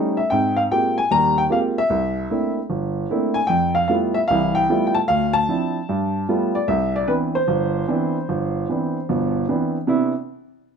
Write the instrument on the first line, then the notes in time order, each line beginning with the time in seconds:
upright piano
Already playing: G3 A3 C#4 D#4
0.17 E5
0.30 G#2 C4 G5
0.57 F5
0.72 G#3 A#3 C4 F4 G4 G5
0.98 G#5
1.11 D#2 G3 A#5
1.38 G5
1.50 G#3 A#3 C4 F4 G4 F5
1.78 E5
1.90 C2
2.30 A3 A#3 C4 D4 E4
2.70 G1
3.10 A3 A#3 C4 D4 E4
3.34 G#5
3.47 F2 G5
3.75 F5
3.88 G3 A3 B3 E4 F4 F5
4.14 E5
4.28 C2 E3 F5
4.55 G5
4.69 G3 A3 B3 E4 F4
4.87 G5
4.95 A5
5.08 D2 F5
5.33 A5
5.48 F3 C4 D4 E4
5.89 G2
6.29 G3 A3 B3 F4
6.55 D5
6.68 C2 E5
6.96 D5
7.08 E3 B3 C4 D4 B4
7.35 C5
7.48 G1
7.88 E3 B3 C4 D4
8.29 G1
8.69 E3 B3 C4 D4
9.09 G1 B2
9.49 E3 B3 C4 D4
9.87 C3 B3 D4 E4